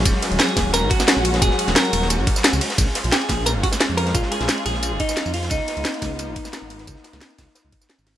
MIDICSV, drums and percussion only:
0, 0, Header, 1, 2, 480
1, 0, Start_track
1, 0, Key_signature, -6, "minor"
1, 0, Tempo, 340909
1, 77, Time_signature, 4, 2, 24, 8
1, 11508, End_track
2, 0, Start_track
2, 0, Title_t, "Drums"
2, 76, Note_on_c, 9, 51, 104
2, 77, Note_on_c, 9, 36, 127
2, 77, Note_on_c, 9, 42, 98
2, 77, Note_on_c, 9, 54, 47
2, 216, Note_off_c, 9, 51, 0
2, 218, Note_off_c, 9, 36, 0
2, 218, Note_off_c, 9, 42, 0
2, 218, Note_off_c, 9, 54, 0
2, 312, Note_on_c, 9, 51, 66
2, 317, Note_off_c, 9, 51, 0
2, 317, Note_on_c, 9, 42, 71
2, 317, Note_on_c, 9, 51, 79
2, 318, Note_on_c, 9, 38, 52
2, 444, Note_off_c, 9, 42, 0
2, 444, Note_on_c, 9, 42, 37
2, 458, Note_off_c, 9, 51, 0
2, 459, Note_off_c, 9, 38, 0
2, 547, Note_on_c, 9, 51, 93
2, 549, Note_on_c, 9, 38, 124
2, 558, Note_off_c, 9, 38, 0
2, 558, Note_off_c, 9, 42, 0
2, 558, Note_on_c, 9, 38, 127
2, 558, Note_on_c, 9, 42, 97
2, 558, Note_on_c, 9, 54, 49
2, 682, Note_off_c, 9, 51, 0
2, 682, Note_on_c, 9, 51, 49
2, 684, Note_off_c, 9, 42, 0
2, 684, Note_on_c, 9, 42, 39
2, 699, Note_off_c, 9, 38, 0
2, 699, Note_off_c, 9, 54, 0
2, 797, Note_on_c, 9, 36, 66
2, 797, Note_on_c, 9, 38, 60
2, 798, Note_off_c, 9, 42, 0
2, 798, Note_off_c, 9, 51, 0
2, 798, Note_on_c, 9, 40, 59
2, 798, Note_on_c, 9, 42, 69
2, 798, Note_on_c, 9, 51, 77
2, 798, Note_on_c, 9, 54, 27
2, 800, Note_off_c, 9, 51, 0
2, 800, Note_on_c, 9, 51, 68
2, 938, Note_off_c, 9, 36, 0
2, 938, Note_off_c, 9, 38, 0
2, 939, Note_off_c, 9, 40, 0
2, 939, Note_off_c, 9, 42, 0
2, 939, Note_off_c, 9, 54, 0
2, 941, Note_off_c, 9, 51, 0
2, 1034, Note_on_c, 9, 51, 92
2, 1038, Note_on_c, 9, 40, 38
2, 1038, Note_on_c, 9, 42, 91
2, 1038, Note_on_c, 9, 54, 50
2, 1175, Note_off_c, 9, 51, 0
2, 1178, Note_off_c, 9, 40, 0
2, 1178, Note_off_c, 9, 42, 0
2, 1178, Note_off_c, 9, 54, 0
2, 1264, Note_on_c, 9, 51, 59
2, 1278, Note_off_c, 9, 51, 0
2, 1278, Note_on_c, 9, 36, 110
2, 1278, Note_on_c, 9, 42, 67
2, 1278, Note_on_c, 9, 51, 74
2, 1403, Note_on_c, 9, 38, 56
2, 1405, Note_on_c, 9, 40, 57
2, 1405, Note_on_c, 9, 54, 57
2, 1419, Note_off_c, 9, 36, 0
2, 1419, Note_off_c, 9, 42, 0
2, 1419, Note_off_c, 9, 51, 0
2, 1518, Note_on_c, 9, 51, 98
2, 1519, Note_off_c, 9, 38, 0
2, 1519, Note_off_c, 9, 54, 0
2, 1519, Note_on_c, 9, 38, 127
2, 1519, Note_on_c, 9, 42, 90
2, 1519, Note_on_c, 9, 54, 45
2, 1529, Note_off_c, 9, 38, 0
2, 1529, Note_on_c, 9, 38, 121
2, 1546, Note_off_c, 9, 40, 0
2, 1659, Note_off_c, 9, 51, 0
2, 1660, Note_off_c, 9, 42, 0
2, 1660, Note_off_c, 9, 54, 0
2, 1669, Note_off_c, 9, 38, 0
2, 1755, Note_on_c, 9, 51, 66
2, 1758, Note_off_c, 9, 51, 0
2, 1758, Note_on_c, 9, 42, 66
2, 1758, Note_on_c, 9, 51, 78
2, 1883, Note_on_c, 9, 38, 58
2, 1885, Note_off_c, 9, 42, 0
2, 1885, Note_on_c, 9, 42, 38
2, 1899, Note_off_c, 9, 51, 0
2, 1998, Note_off_c, 9, 42, 0
2, 1998, Note_on_c, 9, 36, 124
2, 1998, Note_on_c, 9, 42, 93
2, 1998, Note_on_c, 9, 54, 49
2, 2002, Note_on_c, 9, 51, 95
2, 2024, Note_off_c, 9, 38, 0
2, 2123, Note_on_c, 9, 38, 41
2, 2138, Note_off_c, 9, 36, 0
2, 2138, Note_off_c, 9, 42, 0
2, 2138, Note_off_c, 9, 54, 0
2, 2143, Note_off_c, 9, 51, 0
2, 2234, Note_on_c, 9, 51, 63
2, 2238, Note_off_c, 9, 51, 0
2, 2238, Note_on_c, 9, 42, 67
2, 2238, Note_on_c, 9, 51, 80
2, 2264, Note_off_c, 9, 38, 0
2, 2364, Note_on_c, 9, 38, 49
2, 2365, Note_off_c, 9, 42, 0
2, 2365, Note_on_c, 9, 40, 56
2, 2365, Note_on_c, 9, 42, 36
2, 2378, Note_off_c, 9, 51, 0
2, 2469, Note_off_c, 9, 38, 0
2, 2469, Note_on_c, 9, 38, 127
2, 2479, Note_off_c, 9, 38, 0
2, 2479, Note_off_c, 9, 42, 0
2, 2479, Note_on_c, 9, 38, 127
2, 2479, Note_on_c, 9, 42, 95
2, 2479, Note_on_c, 9, 54, 53
2, 2481, Note_on_c, 9, 51, 85
2, 2506, Note_off_c, 9, 40, 0
2, 2605, Note_off_c, 9, 42, 0
2, 2605, Note_on_c, 9, 42, 37
2, 2619, Note_off_c, 9, 38, 0
2, 2619, Note_off_c, 9, 54, 0
2, 2621, Note_off_c, 9, 51, 0
2, 2718, Note_off_c, 9, 42, 0
2, 2718, Note_on_c, 9, 42, 64
2, 2718, Note_on_c, 9, 51, 81
2, 2718, Note_on_c, 9, 54, 29
2, 2719, Note_off_c, 9, 51, 0
2, 2719, Note_on_c, 9, 51, 69
2, 2843, Note_on_c, 9, 38, 43
2, 2859, Note_off_c, 9, 42, 0
2, 2859, Note_off_c, 9, 54, 0
2, 2860, Note_off_c, 9, 51, 0
2, 2956, Note_on_c, 9, 51, 96
2, 2960, Note_on_c, 9, 42, 89
2, 2960, Note_on_c, 9, 54, 49
2, 2984, Note_off_c, 9, 38, 0
2, 3097, Note_off_c, 9, 51, 0
2, 3100, Note_off_c, 9, 42, 0
2, 3100, Note_off_c, 9, 54, 0
2, 3197, Note_on_c, 9, 36, 116
2, 3199, Note_on_c, 9, 42, 68
2, 3199, Note_on_c, 9, 51, 77
2, 3203, Note_off_c, 9, 51, 0
2, 3203, Note_on_c, 9, 51, 73
2, 3325, Note_on_c, 9, 54, 58
2, 3327, Note_on_c, 9, 38, 50
2, 3338, Note_off_c, 9, 36, 0
2, 3340, Note_off_c, 9, 42, 0
2, 3344, Note_off_c, 9, 51, 0
2, 3438, Note_off_c, 9, 38, 0
2, 3438, Note_on_c, 9, 38, 112
2, 3438, Note_on_c, 9, 51, 86
2, 3439, Note_off_c, 9, 38, 0
2, 3439, Note_off_c, 9, 54, 0
2, 3439, Note_on_c, 9, 38, 126
2, 3439, Note_on_c, 9, 42, 87
2, 3439, Note_on_c, 9, 54, 49
2, 3563, Note_off_c, 9, 51, 0
2, 3563, Note_on_c, 9, 51, 49
2, 3564, Note_off_c, 9, 54, 0
2, 3564, Note_on_c, 9, 54, 28
2, 3580, Note_off_c, 9, 38, 0
2, 3580, Note_off_c, 9, 42, 0
2, 3677, Note_on_c, 9, 46, 88
2, 3678, Note_off_c, 9, 51, 0
2, 3678, Note_on_c, 9, 42, 65
2, 3678, Note_on_c, 9, 51, 81
2, 3705, Note_off_c, 9, 54, 0
2, 3803, Note_on_c, 9, 38, 53
2, 3804, Note_off_c, 9, 42, 0
2, 3804, Note_on_c, 9, 42, 37
2, 3818, Note_off_c, 9, 46, 0
2, 3819, Note_off_c, 9, 51, 0
2, 3917, Note_on_c, 9, 36, 120
2, 3917, Note_on_c, 9, 51, 89
2, 3918, Note_off_c, 9, 42, 0
2, 3918, Note_on_c, 9, 42, 92
2, 3918, Note_on_c, 9, 54, 53
2, 3944, Note_off_c, 9, 38, 0
2, 4058, Note_off_c, 9, 36, 0
2, 4058, Note_off_c, 9, 42, 0
2, 4058, Note_off_c, 9, 51, 0
2, 4058, Note_off_c, 9, 54, 0
2, 4157, Note_on_c, 9, 42, 69
2, 4157, Note_on_c, 9, 51, 84
2, 4159, Note_on_c, 9, 38, 49
2, 4160, Note_off_c, 9, 51, 0
2, 4160, Note_on_c, 9, 51, 68
2, 4285, Note_off_c, 9, 42, 0
2, 4285, Note_on_c, 9, 42, 38
2, 4300, Note_off_c, 9, 38, 0
2, 4301, Note_off_c, 9, 51, 0
2, 4398, Note_off_c, 9, 42, 0
2, 4398, Note_on_c, 9, 38, 120
2, 4398, Note_on_c, 9, 42, 92
2, 4398, Note_on_c, 9, 54, 51
2, 4401, Note_on_c, 9, 51, 93
2, 4402, Note_off_c, 9, 38, 0
2, 4402, Note_on_c, 9, 38, 123
2, 4524, Note_off_c, 9, 42, 0
2, 4524, Note_off_c, 9, 51, 0
2, 4524, Note_on_c, 9, 42, 37
2, 4524, Note_on_c, 9, 51, 48
2, 4539, Note_off_c, 9, 54, 0
2, 4543, Note_off_c, 9, 38, 0
2, 4625, Note_off_c, 9, 51, 0
2, 4625, Note_on_c, 9, 51, 69
2, 4629, Note_on_c, 9, 38, 55
2, 4638, Note_off_c, 9, 42, 0
2, 4638, Note_off_c, 9, 51, 0
2, 4638, Note_on_c, 9, 36, 62
2, 4638, Note_on_c, 9, 40, 55
2, 4638, Note_on_c, 9, 42, 64
2, 4638, Note_on_c, 9, 51, 76
2, 4638, Note_on_c, 9, 54, 28
2, 4770, Note_off_c, 9, 38, 0
2, 4778, Note_off_c, 9, 36, 0
2, 4779, Note_off_c, 9, 40, 0
2, 4779, Note_off_c, 9, 42, 0
2, 4779, Note_off_c, 9, 51, 0
2, 4779, Note_off_c, 9, 54, 0
2, 4870, Note_on_c, 9, 51, 96
2, 4878, Note_on_c, 9, 40, 34
2, 4878, Note_on_c, 9, 42, 91
2, 4878, Note_on_c, 9, 54, 52
2, 5011, Note_off_c, 9, 51, 0
2, 5019, Note_off_c, 9, 40, 0
2, 5019, Note_off_c, 9, 42, 0
2, 5019, Note_off_c, 9, 54, 0
2, 5114, Note_on_c, 9, 51, 59
2, 5118, Note_on_c, 9, 36, 115
2, 5119, Note_off_c, 9, 51, 0
2, 5119, Note_on_c, 9, 42, 69
2, 5119, Note_on_c, 9, 51, 80
2, 5233, Note_on_c, 9, 38, 52
2, 5245, Note_on_c, 9, 40, 52
2, 5245, Note_on_c, 9, 54, 62
2, 5258, Note_off_c, 9, 36, 0
2, 5259, Note_off_c, 9, 42, 0
2, 5259, Note_off_c, 9, 51, 0
2, 5357, Note_off_c, 9, 38, 0
2, 5357, Note_on_c, 9, 38, 127
2, 5358, Note_off_c, 9, 38, 0
2, 5358, Note_off_c, 9, 54, 0
2, 5358, Note_on_c, 9, 38, 119
2, 5358, Note_on_c, 9, 42, 92
2, 5358, Note_on_c, 9, 54, 50
2, 5365, Note_on_c, 9, 51, 94
2, 5386, Note_off_c, 9, 40, 0
2, 5499, Note_off_c, 9, 38, 0
2, 5499, Note_off_c, 9, 42, 0
2, 5499, Note_off_c, 9, 54, 0
2, 5506, Note_off_c, 9, 51, 0
2, 5598, Note_on_c, 9, 42, 66
2, 5598, Note_on_c, 9, 51, 81
2, 5599, Note_off_c, 9, 51, 0
2, 5599, Note_on_c, 9, 51, 73
2, 5718, Note_on_c, 9, 38, 52
2, 5726, Note_off_c, 9, 42, 0
2, 5726, Note_on_c, 9, 42, 37
2, 5740, Note_off_c, 9, 51, 0
2, 5837, Note_on_c, 9, 51, 91
2, 5838, Note_on_c, 9, 36, 121
2, 5839, Note_off_c, 9, 42, 0
2, 5839, Note_on_c, 9, 42, 92
2, 5839, Note_on_c, 9, 54, 52
2, 5859, Note_off_c, 9, 38, 0
2, 5953, Note_on_c, 9, 38, 48
2, 5978, Note_off_c, 9, 36, 0
2, 5978, Note_off_c, 9, 51, 0
2, 5979, Note_off_c, 9, 42, 0
2, 5979, Note_off_c, 9, 54, 0
2, 6078, Note_on_c, 9, 51, 64
2, 6079, Note_off_c, 9, 51, 0
2, 6079, Note_on_c, 9, 42, 68
2, 6079, Note_on_c, 9, 51, 87
2, 6094, Note_off_c, 9, 38, 0
2, 6205, Note_off_c, 9, 42, 0
2, 6205, Note_on_c, 9, 40, 57
2, 6205, Note_on_c, 9, 42, 38
2, 6208, Note_on_c, 9, 38, 49
2, 6220, Note_off_c, 9, 51, 0
2, 6308, Note_on_c, 9, 51, 80
2, 6312, Note_off_c, 9, 38, 0
2, 6312, Note_on_c, 9, 38, 112
2, 6319, Note_off_c, 9, 38, 0
2, 6319, Note_off_c, 9, 42, 0
2, 6319, Note_on_c, 9, 38, 116
2, 6319, Note_on_c, 9, 42, 96
2, 6319, Note_on_c, 9, 54, 55
2, 6345, Note_off_c, 9, 40, 0
2, 6445, Note_off_c, 9, 42, 0
2, 6445, Note_on_c, 9, 42, 38
2, 6449, Note_off_c, 9, 51, 0
2, 6459, Note_off_c, 9, 38, 0
2, 6459, Note_off_c, 9, 54, 0
2, 6557, Note_off_c, 9, 42, 0
2, 6557, Note_on_c, 9, 42, 65
2, 6557, Note_on_c, 9, 51, 77
2, 6557, Note_on_c, 9, 54, 28
2, 6676, Note_on_c, 9, 38, 45
2, 6698, Note_off_c, 9, 42, 0
2, 6698, Note_off_c, 9, 51, 0
2, 6698, Note_off_c, 9, 54, 0
2, 6797, Note_on_c, 9, 42, 95
2, 6797, Note_on_c, 9, 54, 55
2, 6800, Note_on_c, 9, 51, 90
2, 6817, Note_off_c, 9, 38, 0
2, 6937, Note_off_c, 9, 42, 0
2, 6937, Note_off_c, 9, 54, 0
2, 6941, Note_off_c, 9, 51, 0
2, 7037, Note_on_c, 9, 36, 102
2, 7037, Note_on_c, 9, 42, 68
2, 7037, Note_on_c, 9, 51, 82
2, 7039, Note_off_c, 9, 51, 0
2, 7039, Note_on_c, 9, 51, 71
2, 7163, Note_on_c, 9, 54, 62
2, 7170, Note_on_c, 9, 38, 53
2, 7177, Note_off_c, 9, 42, 0
2, 7178, Note_off_c, 9, 36, 0
2, 7180, Note_off_c, 9, 51, 0
2, 7270, Note_on_c, 9, 51, 99
2, 7277, Note_off_c, 9, 38, 0
2, 7277, Note_off_c, 9, 54, 0
2, 7277, Note_on_c, 9, 38, 118
2, 7277, Note_on_c, 9, 42, 98
2, 7277, Note_on_c, 9, 54, 52
2, 7282, Note_off_c, 9, 38, 0
2, 7282, Note_on_c, 9, 38, 120
2, 7402, Note_off_c, 9, 51, 0
2, 7402, Note_on_c, 9, 51, 51
2, 7403, Note_off_c, 9, 54, 0
2, 7403, Note_on_c, 9, 54, 31
2, 7418, Note_off_c, 9, 42, 0
2, 7423, Note_off_c, 9, 38, 0
2, 7515, Note_off_c, 9, 51, 0
2, 7515, Note_on_c, 9, 42, 71
2, 7515, Note_on_c, 9, 51, 84
2, 7519, Note_on_c, 9, 46, 91
2, 7543, Note_off_c, 9, 54, 0
2, 7642, Note_off_c, 9, 42, 0
2, 7642, Note_on_c, 9, 42, 38
2, 7645, Note_on_c, 9, 38, 51
2, 7656, Note_off_c, 9, 51, 0
2, 7660, Note_off_c, 9, 46, 0
2, 7739, Note_on_c, 9, 51, 99
2, 7755, Note_off_c, 9, 42, 0
2, 7755, Note_on_c, 9, 42, 104
2, 7755, Note_on_c, 9, 54, 56
2, 7757, Note_on_c, 9, 36, 121
2, 7786, Note_off_c, 9, 38, 0
2, 7880, Note_off_c, 9, 51, 0
2, 7895, Note_off_c, 9, 42, 0
2, 7895, Note_off_c, 9, 54, 0
2, 7898, Note_off_c, 9, 36, 0
2, 7996, Note_on_c, 9, 42, 74
2, 7996, Note_on_c, 9, 51, 83
2, 7997, Note_off_c, 9, 51, 0
2, 7997, Note_on_c, 9, 51, 61
2, 8005, Note_on_c, 9, 38, 51
2, 8122, Note_off_c, 9, 42, 0
2, 8122, Note_on_c, 9, 42, 41
2, 8138, Note_off_c, 9, 51, 0
2, 8146, Note_off_c, 9, 38, 0
2, 8235, Note_off_c, 9, 42, 0
2, 8235, Note_on_c, 9, 38, 119
2, 8235, Note_on_c, 9, 42, 102
2, 8235, Note_on_c, 9, 54, 53
2, 8238, Note_on_c, 9, 51, 100
2, 8242, Note_off_c, 9, 38, 0
2, 8242, Note_on_c, 9, 38, 117
2, 8363, Note_off_c, 9, 42, 0
2, 8363, Note_off_c, 9, 51, 0
2, 8363, Note_on_c, 9, 42, 43
2, 8363, Note_on_c, 9, 51, 49
2, 8375, Note_off_c, 9, 54, 0
2, 8383, Note_off_c, 9, 38, 0
2, 8475, Note_off_c, 9, 42, 0
2, 8475, Note_off_c, 9, 51, 0
2, 8475, Note_on_c, 9, 40, 54
2, 8475, Note_on_c, 9, 42, 66
2, 8475, Note_on_c, 9, 51, 77
2, 8475, Note_on_c, 9, 54, 29
2, 8477, Note_on_c, 9, 36, 58
2, 8481, Note_off_c, 9, 51, 0
2, 8481, Note_on_c, 9, 51, 66
2, 8484, Note_on_c, 9, 38, 56
2, 8616, Note_off_c, 9, 40, 0
2, 8616, Note_off_c, 9, 42, 0
2, 8616, Note_off_c, 9, 54, 0
2, 8618, Note_off_c, 9, 36, 0
2, 8622, Note_off_c, 9, 51, 0
2, 8625, Note_off_c, 9, 38, 0
2, 8715, Note_on_c, 9, 40, 35
2, 8715, Note_on_c, 9, 42, 103
2, 8715, Note_on_c, 9, 54, 54
2, 8716, Note_on_c, 9, 51, 95
2, 8856, Note_off_c, 9, 40, 0
2, 8856, Note_off_c, 9, 42, 0
2, 8856, Note_off_c, 9, 54, 0
2, 8857, Note_off_c, 9, 51, 0
2, 8956, Note_on_c, 9, 42, 74
2, 8956, Note_on_c, 9, 51, 82
2, 8957, Note_on_c, 9, 36, 104
2, 8967, Note_off_c, 9, 51, 0
2, 8967, Note_on_c, 9, 51, 70
2, 9082, Note_on_c, 9, 40, 56
2, 9082, Note_on_c, 9, 54, 66
2, 9087, Note_on_c, 9, 38, 52
2, 9096, Note_off_c, 9, 42, 0
2, 9098, Note_off_c, 9, 36, 0
2, 9108, Note_off_c, 9, 51, 0
2, 9195, Note_off_c, 9, 38, 0
2, 9195, Note_on_c, 9, 38, 127
2, 9196, Note_off_c, 9, 38, 0
2, 9196, Note_off_c, 9, 54, 0
2, 9196, Note_on_c, 9, 38, 109
2, 9196, Note_on_c, 9, 42, 97
2, 9196, Note_on_c, 9, 54, 52
2, 9205, Note_on_c, 9, 51, 98
2, 9223, Note_off_c, 9, 40, 0
2, 9337, Note_off_c, 9, 38, 0
2, 9337, Note_off_c, 9, 42, 0
2, 9337, Note_off_c, 9, 54, 0
2, 9346, Note_off_c, 9, 51, 0
2, 9436, Note_on_c, 9, 42, 73
2, 9436, Note_on_c, 9, 51, 84
2, 9448, Note_off_c, 9, 51, 0
2, 9448, Note_on_c, 9, 51, 71
2, 9558, Note_on_c, 9, 38, 56
2, 9564, Note_off_c, 9, 42, 0
2, 9564, Note_on_c, 9, 42, 38
2, 9589, Note_off_c, 9, 51, 0
2, 9678, Note_off_c, 9, 42, 0
2, 9678, Note_on_c, 9, 36, 122
2, 9678, Note_on_c, 9, 42, 99
2, 9678, Note_on_c, 9, 54, 55
2, 9681, Note_on_c, 9, 51, 93
2, 9699, Note_off_c, 9, 38, 0
2, 9798, Note_on_c, 9, 38, 46
2, 9819, Note_off_c, 9, 36, 0
2, 9819, Note_off_c, 9, 42, 0
2, 9819, Note_off_c, 9, 54, 0
2, 9822, Note_off_c, 9, 51, 0
2, 9913, Note_off_c, 9, 38, 0
2, 9913, Note_on_c, 9, 38, 99
2, 9914, Note_on_c, 9, 51, 74
2, 9918, Note_off_c, 9, 51, 0
2, 9918, Note_on_c, 9, 42, 76
2, 9918, Note_on_c, 9, 51, 75
2, 9918, Note_on_c, 9, 54, 29
2, 10043, Note_off_c, 9, 38, 0
2, 10043, Note_on_c, 9, 38, 43
2, 10044, Note_off_c, 9, 42, 0
2, 10044, Note_on_c, 9, 40, 58
2, 10044, Note_on_c, 9, 42, 39
2, 10059, Note_off_c, 9, 51, 0
2, 10059, Note_off_c, 9, 54, 0
2, 10149, Note_on_c, 9, 51, 83
2, 10154, Note_off_c, 9, 38, 0
2, 10154, Note_on_c, 9, 38, 115
2, 10157, Note_off_c, 9, 38, 0
2, 10157, Note_off_c, 9, 42, 0
2, 10157, Note_on_c, 9, 38, 124
2, 10157, Note_on_c, 9, 42, 100
2, 10157, Note_on_c, 9, 54, 55
2, 10185, Note_off_c, 9, 40, 0
2, 10284, Note_off_c, 9, 42, 0
2, 10284, Note_on_c, 9, 42, 43
2, 10290, Note_off_c, 9, 51, 0
2, 10298, Note_off_c, 9, 38, 0
2, 10298, Note_off_c, 9, 54, 0
2, 10395, Note_on_c, 9, 51, 86
2, 10397, Note_off_c, 9, 42, 0
2, 10397, Note_off_c, 9, 51, 0
2, 10397, Note_on_c, 9, 40, 55
2, 10397, Note_on_c, 9, 42, 70
2, 10397, Note_on_c, 9, 51, 77
2, 10397, Note_on_c, 9, 54, 28
2, 10398, Note_on_c, 9, 36, 62
2, 10398, Note_on_c, 9, 38, 115
2, 10519, Note_off_c, 9, 38, 0
2, 10519, Note_on_c, 9, 38, 43
2, 10538, Note_off_c, 9, 40, 0
2, 10538, Note_off_c, 9, 42, 0
2, 10538, Note_off_c, 9, 51, 0
2, 10538, Note_off_c, 9, 54, 0
2, 10539, Note_off_c, 9, 36, 0
2, 10633, Note_off_c, 9, 38, 0
2, 10633, Note_on_c, 9, 38, 96
2, 10637, Note_on_c, 9, 42, 101
2, 10637, Note_on_c, 9, 54, 54
2, 10644, Note_on_c, 9, 51, 78
2, 10773, Note_off_c, 9, 38, 0
2, 10778, Note_off_c, 9, 42, 0
2, 10778, Note_off_c, 9, 54, 0
2, 10785, Note_off_c, 9, 51, 0
2, 10876, Note_on_c, 9, 42, 75
2, 10876, Note_on_c, 9, 51, 74
2, 10878, Note_on_c, 9, 36, 105
2, 10885, Note_off_c, 9, 51, 0
2, 10885, Note_on_c, 9, 51, 59
2, 11001, Note_on_c, 9, 38, 52
2, 11004, Note_on_c, 9, 54, 61
2, 11017, Note_off_c, 9, 42, 0
2, 11019, Note_off_c, 9, 36, 0
2, 11026, Note_off_c, 9, 51, 0
2, 11116, Note_off_c, 9, 38, 0
2, 11116, Note_on_c, 9, 38, 124
2, 11119, Note_off_c, 9, 38, 0
2, 11119, Note_off_c, 9, 54, 0
2, 11119, Note_on_c, 9, 38, 117
2, 11119, Note_on_c, 9, 42, 96
2, 11119, Note_on_c, 9, 54, 52
2, 11120, Note_on_c, 9, 51, 98
2, 11239, Note_off_c, 9, 51, 0
2, 11239, Note_on_c, 9, 51, 44
2, 11245, Note_off_c, 9, 54, 0
2, 11245, Note_on_c, 9, 54, 30
2, 11259, Note_off_c, 9, 38, 0
2, 11259, Note_off_c, 9, 42, 0
2, 11358, Note_off_c, 9, 51, 0
2, 11358, Note_on_c, 9, 38, 37
2, 11358, Note_on_c, 9, 42, 76
2, 11358, Note_on_c, 9, 51, 77
2, 11361, Note_on_c, 9, 46, 75
2, 11386, Note_off_c, 9, 54, 0
2, 11499, Note_off_c, 9, 38, 0
2, 11499, Note_off_c, 9, 42, 0
2, 11499, Note_off_c, 9, 51, 0
2, 11501, Note_off_c, 9, 46, 0
2, 11508, End_track
0, 0, End_of_file